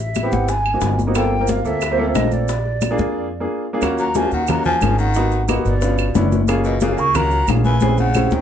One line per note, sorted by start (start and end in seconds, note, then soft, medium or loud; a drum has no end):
0.00 0.26 A1 medium
0.00 0.34 E5 medium
0.15 high bongo soft
0.15 high conga medium
0.15 claves medium
0.15 maracas medium
0.23 0.48 B3 medium
0.23 0.48 C4 medium
0.23 0.49 E4 medium
0.23 0.49 G4 medium
0.32 0.79 G#1 medium
0.32 0.50 F#5 medium
0.32 high bongo soft
0.32 high conga medium
0.32 maracas soft
0.48 0.99 G#5 loud
0.48 high bongo medium
0.48 high conga soft
0.48 maracas medium
0.66 high conga soft
0.66 claves medium
0.74 0.97 A#3 medium
0.74 0.97 C4 medium
0.74 0.97 D#4 soft
0.74 0.97 F#4 medium
0.81 1.60 G1 medium
0.81 high bongo medium
0.81 low bongo medium
0.81 high conga soft
0.81 maracas medium
0.99 high bongo soft
0.99 high conga medium
0.99 maracas soft
1.07 1.13 A#3 medium
1.07 1.13 C4 medium
1.07 1.13 D#4 medium
1.07 1.13 F#4 medium
1.15 1.33 A#3 medium
1.15 1.33 C4 medium
1.15 1.34 F4 medium
1.15 1.34 A4 medium
1.15 1.51 G5 loud
1.15 high bongo medium
1.15 high conga soft
1.15 claves medium
1.15 maracas medium
1.32 high conga soft
1.40 1.58 A#3 medium
1.40 1.58 C4 medium
1.40 1.58 F4 medium
1.40 1.58 A#4 medium
1.47 1.68 F5 medium
1.47 high bongo medium
1.47 high conga medium
1.47 maracas medium
1.64 2.11 D2 medium
1.64 1.83 A#3 medium
1.64 1.83 C4 medium
1.64 1.83 F4 medium
1.64 1.83 A4 medium
1.64 2.17 E5 loud
1.64 high conga soft
1.64 maracas soft
1.81 high bongo medium
1.81 high conga soft
1.81 claves medium
1.81 maracas medium
1.91 1.96 A#3 medium
1.91 1.97 C4 medium
1.91 1.97 F4 medium
1.91 1.97 C5 medium
1.98 2.04 A#3 medium
1.98 2.04 C4 medium
1.98 2.05 F4 medium
1.98 2.05 A4 medium
1.98 high conga soft
2.07 2.49 A#3 medium
2.07 2.49 C4 medium
2.07 2.49 F4 medium
2.07 2.49 A4 medium
2.14 2.93 A#1 medium
2.14 2.34 D#5 medium
2.14 high bongo medium
2.14 low bongo medium
2.14 high conga medium
2.14 claves medium
2.14 maracas medium
2.31 3.49 D5 medium
2.31 high conga medium
2.31 maracas soft
2.48 high bongo medium
2.48 high conga soft
2.48 maracas medium
2.65 high bongo soft
2.65 high conga soft
2.81 high bongo medium
2.81 high conga medium
2.81 claves medium
2.81 maracas medium
2.91 3.26 A#3 medium
2.91 3.26 D4 medium
2.91 3.26 F4 medium
2.91 3.26 G#4 medium
2.98 3.45 F2 medium
2.98 high bongo soft
2.98 high conga medium
2.98 maracas soft
3.40 3.64 A#3 medium
3.40 3.64 D4 medium
3.40 3.64 F4 medium
3.40 3.64 G#4 medium
3.73 3.79 A#3 medium
3.73 3.79 D4 medium
3.73 3.80 F4 medium
3.73 3.80 G#4 medium
3.82 4.29 D#2 medium
3.82 4.05 A#3 medium
3.82 4.05 C#4 medium
3.82 4.06 F4 medium
3.82 4.06 F#4 medium
3.82 high bongo medium
3.82 high conga soft
3.82 claves medium
3.82 maracas medium
3.98 4.18 F#3 medium
3.98 4.18 A#5 medium
3.98 high bongo soft
3.98 high conga soft
3.98 maracas soft
4.14 4.32 F3 medium
4.14 4.39 A#3 medium
4.14 4.39 C#4 medium
4.14 4.39 F4 medium
4.14 4.39 F#4 medium
4.14 4.33 G#5 medium
4.14 high bongo medium
4.14 high conga medium
4.14 maracas medium
4.31 4.79 D#2 medium
4.31 4.51 D#3 medium
4.31 4.51 F#5 loud
4.31 high bongo soft
4.31 high conga soft
4.31 maracas soft
4.47 4.65 F#3 medium
4.47 4.72 A#3 medium
4.47 4.72 C#4 medium
4.47 4.72 F4 medium
4.47 4.73 F#4 medium
4.47 4.65 A#5 loud
4.47 high bongo medium
4.47 high conga soft
4.47 low conga medium
4.47 claves medium
4.47 maracas medium
4.65 4.97 F3 medium
4.65 4.97 G#5 medium
4.65 high bongo soft
4.65 high conga soft
4.65 low conga medium
4.65 maracas soft
4.81 5.60 G#1 medium
4.81 5.05 A#3 medium
4.81 5.06 C#4 medium
4.81 5.06 F4 medium
4.81 5.06 G#4 medium
4.81 high bongo soft
4.81 low bongo medium
4.81 high conga medium
4.81 claves medium
4.81 maracas medium
4.98 5.45 D#3 medium
4.98 5.46 F#5 medium
4.98 maracas soft
5.14 5.39 A#3 medium
5.14 5.39 B3 medium
5.14 5.39 D#4 medium
5.14 5.40 F#4 medium
5.14 high bongo medium
5.14 high conga soft
5.14 maracas medium
5.31 high bongo soft
5.31 high conga soft
5.31 maracas soft
5.48 5.72 A#3 medium
5.48 5.72 B3 medium
5.48 5.72 D#4 medium
5.48 5.73 F#4 medium
5.48 high bongo medium
5.48 high conga medium
5.48 claves medium
5.48 maracas medium
5.65 6.12 G1 medium
5.65 6.28 B2 medium
5.65 6.29 D5 medium
5.65 high bongo soft
5.65 high conga soft
5.65 maracas soft
5.81 6.05 B3 medium
5.81 6.05 C#4 medium
5.81 6.06 D4 medium
5.81 6.06 F4 medium
5.81 high bongo medium
5.81 high conga soft
5.81 maracas medium
5.98 high bongo soft
5.98 high conga soft
5.98 claves medium
5.98 maracas soft
6.15 6.93 F#1 medium
6.15 6.39 B3 medium
6.15 6.39 C#4 medium
6.15 6.39 D4 medium
6.15 6.39 E4 medium
6.15 high bongo soft
6.15 low bongo medium
6.15 high conga medium
6.15 maracas medium
6.32 high conga medium
6.32 maracas soft
6.48 6.72 A#3 medium
6.48 6.72 C#4 medium
6.48 6.72 F4 medium
6.48 6.72 G#4 medium
6.48 high bongo medium
6.48 high conga soft
6.48 claves medium
6.48 maracas medium
6.64 6.80 B2 medium
6.64 6.81 D#5 medium
6.64 high bongo soft
6.64 high conga soft
6.64 maracas soft
6.80 7.00 C#3 medium
6.80 7.05 A#3 medium
6.80 7.06 C#4 medium
6.80 7.06 F4 medium
6.80 7.06 G#4 medium
6.80 7.00 F5 medium
6.80 high bongo medium
6.80 high conga medium
6.80 maracas medium
6.98 7.45 C#2 medium
6.98 7.17 A#3 medium
6.98 7.17 C#6 loud
6.98 high bongo soft
6.98 high conga soft
6.98 maracas soft
7.14 7.49 F#3 medium
7.14 7.38 A#3 medium
7.14 7.38 C#4 medium
7.14 7.38 F4 medium
7.14 7.39 A#4 medium
7.14 7.49 A#5 loud
7.14 high bongo medium
7.14 high conga soft
7.14 low conga medium
7.14 claves medium
7.14 maracas medium
7.31 high bongo soft
7.31 high conga soft
7.31 maracas soft
7.48 8.26 A#1 loud
7.48 7.72 A#3 medium
7.48 7.72 C#4 medium
7.48 7.72 F4 medium
7.48 7.72 G#4 medium
7.48 high bongo soft
7.48 low bongo medium
7.48 high conga medium
7.48 claves medium
7.48 maracas medium
7.64 7.96 E3 medium
7.64 7.96 G#5 medium
7.64 high conga medium
7.64 maracas soft
7.80 8.05 C4 medium
7.80 8.05 C#4 medium
7.80 8.05 E4 medium
7.80 8.06 G#4 medium
7.80 high bongo medium
7.80 high conga medium
7.80 maracas medium
7.98 8.35 C#3 medium
7.98 8.34 F#5 medium
7.98 high bongo soft
7.98 high conga medium
7.98 maracas soft
8.14 8.39 C4 medium
8.14 8.39 C#4 medium
8.14 8.39 E4 medium
8.14 8.39 G#4 medium
8.14 high bongo medium
8.14 high conga medium
8.14 claves medium
8.14 maracas medium
8.31 8.41 D#2 medium
8.31 8.41 D#3 medium
8.31 8.41 G5 medium
8.31 high bongo soft
8.31 high conga medium
8.31 maracas soft